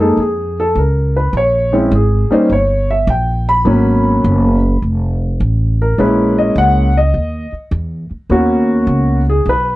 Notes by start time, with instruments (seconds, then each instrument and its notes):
Already playing: upright bass F#2
0.00 grand piano G#3 A#3 D#4 G#4 A4
0.17 upright bass F2, grand piano G#4
0.60 grand piano A4
0.75 upright bass C#2, grand piano A#4
1.16 grand piano B4
1.33 upright bass A#1
1.37 grand piano C#5
1.72 grand piano G#3 C4 C#4 D#4 E4
1.92 upright bass G#1, grand piano G#4
2.31 grand piano G3 A#3 C#4 D#4 C5, muted upright bass stroke
2.49 upright bass G1, grand piano C#5
2.91 grand piano E5
3.07 upright bass A#1, grand piano G5
3.49 grand piano B5
3.65 upright bass G#1, grand piano F#3 A#3 B3 C#4
4.24 upright bass F#1
4.82 upright bass F1
5.40 upright bass A1
5.82 grand piano A#4
5.98 upright bass A#1, grand piano G#3 A#3 C#4 E4 B4
6.38 grand piano D#5
6.56 upright bass C#2, grand piano F#5
6.97 grand piano D#5
7.14 upright bass D#2
7.52 muted upright bass stroke
7.71 upright bass E2
8.11 muted upright bass stroke
8.30 upright bass D#2, grand piano A#3 B3 C#4 F#4
8.87 upright bass C#2
9.29 grand piano G#4
9.46 upright bass B1, grand piano B4